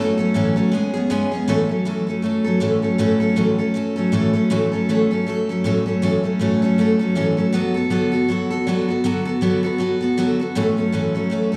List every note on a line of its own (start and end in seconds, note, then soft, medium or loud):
0.00 0.18 A2 medium
0.00 0.18 E3 medium
0.00 0.18 F#3 loud
0.00 0.18 A3 loud
0.00 0.18 C#4 loud
0.00 0.16 A4 loud
0.17 0.34 F#3 medium
0.17 0.34 A3 soft
0.17 0.34 C#4 medium
0.17 0.34 A4 medium
0.34 0.56 A2 medium
0.34 0.56 E3 medium
0.34 0.57 F#3 medium
0.34 0.56 A3 medium
0.34 0.56 C#4 medium
0.34 0.55 A4 medium
0.56 0.71 F#3 medium
0.56 0.73 A3 medium
0.56 0.72 C#4 medium
0.56 0.72 A4 medium
0.72 0.94 G#3 medium
0.72 0.94 B3 medium
0.72 0.94 C#4 medium
0.72 0.92 G#4 medium
0.94 1.09 B3 medium
0.94 1.10 C#4 medium
0.94 1.09 G#4 medium
1.10 1.32 E3 loud
1.10 1.32 G#3 medium
1.10 1.32 B3 loud
1.10 1.32 C#4 medium
1.10 1.30 G#4 loud
1.32 1.49 B3 medium
1.32 1.48 C#4 medium
1.32 1.47 G#4 medium
1.48 1.69 A2 loud
1.48 1.70 E3 loud
1.48 1.70 F#3 medium
1.48 1.70 A3 loud
1.48 1.69 C#4 loud
1.48 1.68 A4 loud
1.69 1.85 F#3 soft
1.69 1.85 A3 medium
1.69 1.86 C#4 medium
1.69 1.85 A4 medium
1.85 2.07 A2 medium
1.85 2.07 E3 medium
1.85 2.08 F#3 medium
1.85 2.08 A3 medium
1.85 2.07 C#4 medium
1.85 2.06 A4 medium
2.07 2.21 F#3 medium
2.07 2.22 A3 medium
2.07 2.23 C#4 medium
2.07 2.23 A4 medium
2.22 2.45 F#3 medium
2.22 2.45 A3 medium
2.22 2.45 C#4 medium
2.22 2.43 A4 medium
2.44 2.60 F#3 medium
2.44 2.61 A3 medium
2.44 2.61 C#4 medium
2.44 2.61 A4 medium
2.60 2.82 A2 medium
2.60 2.83 E3 medium
2.60 2.83 F#3 medium
2.60 2.83 A3 medium
2.60 2.82 C#4 medium
2.60 2.81 A4 medium
2.82 2.98 F#3 soft
2.82 2.98 A3 medium
2.82 2.99 C#4 medium
2.82 2.98 A4 medium
2.98 3.20 A2 medium
2.98 3.21 E3 loud
2.98 3.21 F#3 loud
2.98 3.21 A3 loud
2.98 3.20 C#4 loud
2.98 3.19 A4 loud
3.20 3.36 F#3 soft
3.20 3.36 A3 medium
3.20 3.36 C#4 medium
3.20 3.36 A4 medium
3.36 3.58 A2 medium
3.36 3.58 E3 medium
3.36 3.59 F#3 medium
3.36 3.59 A3 medium
3.36 3.58 C#4 medium
3.36 3.57 A4 medium
3.58 3.73 F#3 soft
3.58 3.74 A3 medium
3.58 3.75 C#4 medium
3.58 3.74 A4 medium
3.74 3.96 F#3 medium
3.74 3.97 A3 medium
3.74 3.96 C#4 medium
3.74 3.95 A4 medium
3.96 4.12 F#3 medium
3.96 4.12 A3 medium
3.96 4.13 C#4 medium
3.96 4.12 A4 medium
4.12 4.34 A2 medium
4.12 4.34 E3 medium
4.12 4.34 F#3 medium
4.12 4.34 A3 loud
4.12 4.33 C#4 medium
4.12 4.32 A4 medium
4.33 4.50 F#3 soft
4.33 4.50 A3 soft
4.33 4.50 C#4 medium
4.33 4.50 A4 medium
4.50 4.72 A2 loud
4.50 4.72 E3 medium
4.50 4.72 F#3 medium
4.50 4.73 A3 loud
4.50 4.72 C#4 loud
4.50 4.71 A4 loud
4.72 4.88 F#3 medium
4.72 4.89 A3 medium
4.72 4.88 C#4 medium
4.72 4.88 A4 medium
4.89 5.10 A2 medium
4.89 5.10 E3 medium
4.89 5.11 F#3 medium
4.89 5.11 A3 medium
4.89 5.10 C#4 medium
4.89 5.09 A4 medium
5.11 5.25 F#3 soft
5.11 5.26 A3 medium
5.11 5.27 C#4 medium
5.11 5.26 A4 medium
5.27 5.48 F#3 medium
5.27 5.49 A3 medium
5.27 5.49 C#4 medium
5.27 5.48 A4 medium
5.49 5.64 F#3 medium
5.49 5.65 A3 medium
5.49 5.65 C#4 medium
5.49 5.64 A4 medium
5.64 5.86 A2 medium
5.64 5.86 E3 medium
5.64 5.87 F#3 medium
5.64 5.87 A3 medium
5.64 5.86 C#4 loud
5.64 5.85 A4 medium
5.86 6.02 F#3 medium
5.86 6.02 A3 medium
5.86 6.02 C#4 medium
5.86 6.02 A4 medium
6.02 6.24 A2 medium
6.02 6.24 E3 medium
6.02 6.24 F#3 medium
6.02 6.24 A3 medium
6.02 6.23 C#4 loud
6.02 6.22 A4 loud
6.23 6.39 F#3 medium
6.23 6.40 A3 medium
6.23 6.40 C#4 medium
6.23 6.39 A4 medium
6.39 6.61 A2 medium
6.39 6.62 E3 medium
6.39 6.62 F#3 medium
6.39 6.62 A3 medium
6.39 6.62 C#4 medium
6.39 6.61 A4 medium
6.62 6.77 F#3 medium
6.62 6.78 A3 medium
6.62 6.78 C#4 medium
6.62 6.77 A4 medium
6.78 7.00 F#3 medium
6.78 7.00 A3 medium
6.78 6.99 C#4 medium
6.78 6.98 A4 medium
6.99 7.15 F#3 medium
6.99 7.15 A3 medium
6.99 7.16 C#4 medium
6.99 7.15 A4 medium
7.15 7.37 A2 medium
7.15 7.37 E3 medium
7.15 7.37 F#3 medium
7.15 7.38 A3 medium
7.15 7.37 C#4 medium
7.15 7.36 A4 medium
7.37 7.52 F#3 soft
7.37 7.53 A3 medium
7.37 7.54 C#4 medium
7.37 7.53 A4 medium
7.53 7.75 D3 medium
7.53 7.75 F#3 medium
7.53 7.75 B3 loud
7.53 7.75 F#4 loud
7.53 7.73 A4 loud
7.74 7.90 B3 soft
7.74 7.91 F#4 medium
7.74 7.90 A4 medium
7.90 8.12 D3 medium
7.90 8.12 F#3 medium
7.90 8.13 B3 medium
7.90 8.12 F#4 medium
7.90 8.10 A4 medium
8.12 8.29 B3 medium
8.12 8.29 F#4 medium
8.12 8.28 A4 medium
8.28 8.50 F#3 medium
8.28 8.51 B3 medium
8.28 8.51 F#4 medium
8.28 8.49 A4 medium
8.50 8.67 B3 medium
8.50 8.67 F#4 medium
8.50 8.66 A4 medium
8.67 8.88 D3 medium
8.67 8.89 F#3 medium
8.67 8.89 B3 medium
8.67 8.89 F#4 medium
8.67 8.87 A4 loud
8.88 9.04 B3 soft
8.88 9.04 F#4 medium
8.88 9.04 A4 medium
9.04 9.26 D3 medium
9.04 9.26 F#3 loud
9.04 9.26 B3 medium
9.04 9.26 F#4 loud
9.04 9.24 A4 loud
9.25 9.41 B3 soft
9.25 9.41 F#4 medium
9.25 9.42 A4 medium
9.41 9.63 D3 medium
9.41 9.64 F#3 medium
9.41 9.64 B3 medium
9.41 9.63 F#4 medium
9.41 9.62 A4 medium
9.63 9.78 B3 medium
9.63 9.79 F#4 medium
9.63 9.79 A4 medium
9.78 10.01 F#3 medium
9.78 10.02 B3 medium
9.78 10.01 F#4 medium
9.78 9.99 A4 medium
10.01 10.17 B3 medium
10.01 10.18 F#4 medium
10.01 10.17 A4 medium
10.17 10.40 D3 medium
10.17 10.40 F#3 medium
10.17 10.40 B3 medium
10.17 10.40 F#4 medium
10.17 10.38 A4 medium
10.40 10.56 B3 soft
10.40 10.56 F#4 medium
10.40 10.56 A4 medium
10.55 10.77 A2 medium
10.55 10.78 E3 medium
10.55 10.78 F#3 loud
10.55 10.78 A3 medium
10.55 10.77 C#4 loud
10.55 10.76 A4 loud
10.77 10.93 F#3 soft
10.77 10.93 A3 medium
10.77 10.93 C#4 medium
10.77 10.93 A4 medium
10.92 11.15 A2 medium
10.92 11.15 E3 medium
10.92 11.16 F#3 medium
10.92 11.15 A3 medium
10.92 11.14 C#4 medium
10.92 11.13 A4 medium
11.14 11.29 F#3 medium
11.14 11.30 A3 medium
11.14 11.31 C#4 medium
11.14 11.31 A4 medium
11.30 11.53 F#3 medium
11.30 11.53 A3 medium
11.30 11.52 C#4 medium
11.30 11.51 A4 medium
11.52 11.57 C#4 medium
11.52 11.57 A4 medium